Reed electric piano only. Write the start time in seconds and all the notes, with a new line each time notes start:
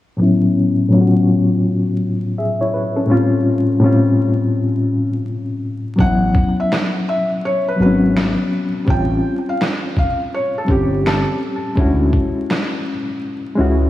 0.17 A2 F#3 B3 C#4
0.22 E4
0.89 A2 F#3 B3 C#4
0.94 F4
1.01 F#4
2.38 G#4 E5
2.61 E4 C#5
2.74 B4
2.96 C#4 A4
3.06 A2 G3 C4
3.10 C#4 F4
3.80 A2 G3 C4
3.84 C#4 F4
5.96 F#3 B3 C#4
6.01 E4
7.76 F#3 B3 C4
7.81 F#4
7.86 C#4
8.85 G3 C4 C#4
8.90 F4
10.65 G3 C4 C#4
10.70 G4
11.76 G#3 C#4 E4
11.81 F#4
13.55 G#3 C#4 E4
13.61 F#4